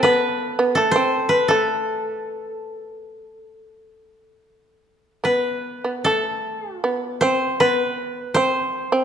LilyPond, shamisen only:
\new Staff \with { instrumentName = "Shamisen" } { \time 4/4 \tempo 4 = 80 b8. b16 a16 c'8. a2~ | a2. b8. b16 | a4 b8 c'8 b4 c'8. c'16 | }